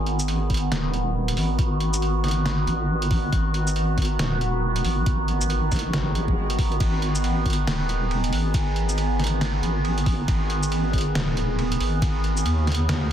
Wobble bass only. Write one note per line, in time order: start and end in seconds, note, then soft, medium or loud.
0.00 0.70 G#1 loud
0.72 1.35 D#1 loud
1.37 2.66 G#1 loud
2.67 3.31 G#1 loud
3.33 4.18 G#1 loud
4.19 4.83 D#1 loud
4.85 5.70 G#1 loud
5.72 6.36 G#1 loud
6.37 6.79 G#1 loud
6.80 7.66 G#1 loud
7.67 8.31 D#1 loud
8.32 9.62 G#1 loud
9.63 10.27 G#1 loud
10.28 11.14 G#1 loud
11.15 11.79 D#1 loud
11.80 12.44 G#1 loud
12.46 12.88 D#2 loud
12.89 13.12 D#2 loud